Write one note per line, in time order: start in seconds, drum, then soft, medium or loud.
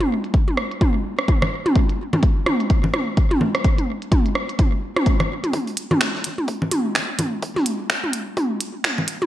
0.01 closed hi-hat soft
0.01 high tom medium
0.24 closed hi-hat soft
0.34 kick loud
0.34 closed hi-hat medium
0.48 high tom soft
0.57 cross-stick medium
0.71 closed hi-hat soft
0.81 kick loud
0.81 closed hi-hat medium
0.81 high tom medium
1.19 cross-stick medium
1.28 kick loud
1.28 closed hi-hat medium
1.28 high tom soft
1.42 cross-stick medium
1.42 low conga medium
1.66 closed hi-hat soft
1.66 high tom medium
1.76 kick loud
1.76 closed hi-hat medium
1.89 closed hi-hat soft
2.13 closed hi-hat soft
2.13 high tom soft
2.13 low conga medium
2.23 kick loud
2.23 closed hi-hat medium
2.46 cross-stick medium
2.46 high tom medium
2.60 closed hi-hat soft
2.70 kick loud
2.70 closed hi-hat medium
2.84 low conga medium
2.94 cross-stick medium
2.94 high tom soft
3.17 kick loud
3.17 closed hi-hat medium
3.31 high tom medium
3.41 low conga medium
3.55 cross-stick medium
3.55 closed hi-hat soft
3.64 kick loud
3.64 closed hi-hat medium
3.78 closed hi-hat soft
3.78 high tom soft
4.02 closed hi-hat soft
4.12 kick loud
4.12 closed hi-hat medium
4.12 high tom medium
4.26 closed hi-hat soft
4.35 cross-stick medium
4.49 closed hi-hat soft
4.59 kick loud
4.59 closed hi-hat medium
4.59 high tom soft
4.97 cross-stick medium
4.97 high tom medium
5.06 kick loud
5.06 closed hi-hat medium
5.20 cross-stick medium
5.20 closed hi-hat soft
5.20 low conga medium
5.44 closed hi-hat soft
5.44 high tom soft
5.53 kick loud
5.53 closed hi-hat medium
5.53 high tom soft
5.67 closed hi-hat soft
5.77 closed hi-hat medium
5.91 high tom medium
5.91 low conga medium
6.01 finger snap loud
6.01 kick loud
6.01 snare loud
6.01 closed hi-hat medium
6.15 snare soft
6.24 snare soft
6.24 closed hi-hat medium
6.38 high tom soft
6.48 kick loud
6.48 closed hi-hat medium
6.62 low conga medium
6.71 closed hi-hat medium
6.71 high tom medium
6.95 finger snap medium
6.95 kick loud
6.95 snare loud
6.95 closed hi-hat medium
7.19 closed hi-hat medium
7.19 high tom soft
7.19 low conga medium
7.42 kick loud
7.42 closed hi-hat medium
7.56 snare soft
7.56 high tom medium
7.66 closed hi-hat medium
7.90 finger snap loud
7.90 kick loud
7.90 snare loud
7.90 closed hi-hat medium
8.04 high tom soft
8.13 closed hi-hat medium
8.37 kick loud
8.37 closed hi-hat medium
8.37 high tom medium
8.61 closed hi-hat medium
8.84 finger snap medium
8.84 kick loud
8.84 snare loud
8.84 closed hi-hat medium
8.84 high tom soft
8.98 low conga medium
9.08 closed hi-hat medium
9.22 high tom medium